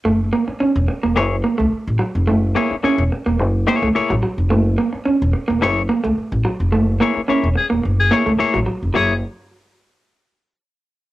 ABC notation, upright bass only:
X:1
M:4/4
L:1/16
Q:1/4=108
K:F#mix
V:1 name="Upright bass" clef=bass
F,,,2 z3 E,,, z E,,, F,,,2 z C,, z =A,,, z ^E,,, | F,,,2 z3 E,,, z E,,, F,,,2 z C,, z =A,,, z ^E,,, | F,,,2 z3 E,,, z E,,, F,,,2 z C,, z =A,,, z ^E,,, | F,,,2 z3 E,,, z E,,, F,,,2 z C,, z =A,,, z ^E,,, |
F,,,2 z12 z2 |]